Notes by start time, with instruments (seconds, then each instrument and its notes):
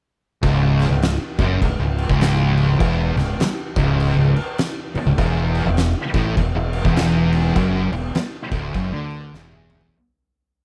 0.42 fingered electric bass C#1, distorted electric guitar C#2, kick, crash
0.79 snare, crash
0.90 fingered electric bass C#1, distorted electric guitar C#2
1.02 snare, crash
1.38 fingered electric bass F#1, distorted electric guitar F#2, kick, crash
1.61 fingered electric bass C#1, distorted electric guitar C#2, kick, crash
1.79 fingered electric bass C#1, distorted electric guitar C#2
1.98 crash
2.09 fingered electric bass C#1, distorted electric guitar C#2, kick
2.21 snare, crash
2.57 crash
2.80 fingered electric bass E1, distorted electric guitar E2, kick, crash
3.16 fingered electric bass C#1, distorted electric guitar C#2, snare, crash
3.39 muted fingered electric bass stroke, muted distorted electric guitar stroke, snare, crash
3.76 fingered electric bass C#1, distorted electric guitar C#2, kick, crash
4.00 crash
4.17 fingered electric bass C#1, distorted electric guitar C#2
4.36 crash
4.58 snare, crash
4.95 muted fingered electric bass stroke, muted distorted electric guitar stroke, crash
5.06 fingered electric bass C#1, distorted electric guitar C#2
5.18 fingered electric bass E1, distorted electric guitar E2, kick, crash
5.55 crash
5.66 fingered electric bass E1, distorted electric guitar E2
5.77 snare, crash
6.14 fingered electric bass A1, distorted electric guitar A2, kick, crash
6.37 fingered electric bass E1, distorted electric guitar E2, kick, crash
6.55 fingered electric bass E1, distorted electric guitar E2
6.73 crash
6.85 fingered electric bass E1, distorted electric guitar E2, kick
6.96 snare, crash
7.33 crash
7.56 fingered electric bass F#1, distorted electric guitar F#2, kick, crash
7.92 fingered electric bass E1, distorted electric guitar E2, crash
8.15 muted fingered electric bass stroke, muted distorted electric guitar stroke, snare, crash
8.51 fingered electric bass D1, distorted electric guitar D2, kick, crash
8.74 fingered electric bass F#1, distorted electric guitar F#2, kick, crash
8.92 fingered electric bass D2, distorted electric guitar D3
9.11 crash
9.33 fingered electric bass E1, distorted electric guitar E2, snare
9.52 high tom
9.70 mid tom
9.81 floor tom